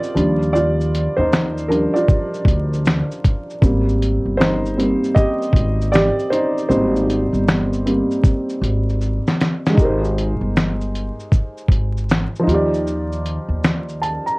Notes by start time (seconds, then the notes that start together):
Already playing: G3 A#3 C4 D#4 F4 G4 C5 D5 D#5
0.04 shaker
0.15 D#2 F3 G3 D4, closed hi-hat, shaker
0.42 shaker
0.53 F4 D5, shaker
0.81 shaker
0.95 closed hi-hat, shaker
1.16 D#2 D#4 C5
1.33 finger snap, snare, shaker
1.58 shaker
1.68 F3 G3 D4 A#4, closed hi-hat, shaker
1.93 F4 D5, shaker
2.08 kick, shaker
2.34 shaker
2.45 D2, kick, closed hi-hat, shaker
2.74 shaker
2.85 finger snap, snare, shaker
3.12 shaker
3.25 kick, closed hi-hat, shaker
3.50 shaker
3.61 G#1 G3 A#3 C4, kick, shaker
3.89 shaker
4.02 closed hi-hat, shaker
4.25 G1
4.37 D#4 C5, snare, shaker
4.42 finger snap
4.66 shaker
4.77 G3 A#3 C4, closed hi-hat, shaker
5.04 shaker
5.15 G4 D#5, kick, shaker
5.42 shaker
5.53 G#1, kick, closed hi-hat, shaker
5.81 shaker
5.92 G4 D5, finger snap, snare, shaker
6.19 shaker
6.30 D#4 C5, closed hi-hat, shaker
6.58 shaker
6.69 G#1 G3 A#3 C4 D#4 C5, shaker
6.96 shaker
7.10 closed hi-hat, shaker
7.33 G1, shaker
7.48 finger snap, snare, shaker
7.73 shaker
7.85 G3 A#3 C4, closed hi-hat, shaker
8.11 shaker
8.24 kick, shaker
8.50 shaker
8.62 G#1, closed hi-hat, shaker
8.89 shaker
9.01 shaker
9.27 snare, shaker
9.41 snare, closed hi-hat, shaker
9.66 G#3, snare, shaker
9.74 G#1 D#4 G4, kick
9.79 A#4, shaker
9.85 C5
10.04 shaker
10.18 closed hi-hat, shaker
10.41 G1
10.56 finger snap, snare, shaker
10.81 shaker
10.95 closed hi-hat, shaker
11.20 shaker
11.32 kick, shaker
11.57 shaker
11.68 G#1, kick, closed hi-hat, shaker
11.97 shaker
12.09 finger snap, snare, shaker
12.35 F3, shaker
12.43 D#2 D#4
12.47 F4 G4, closed hi-hat, shaker
12.54 D5
12.74 shaker
12.87 shaker
13.12 shaker
13.26 closed hi-hat, shaker
13.48 D#2
13.64 finger snap, snare, shaker
13.89 shaker
14.01 A5, closed hi-hat, shaker
14.26 A#5, shaker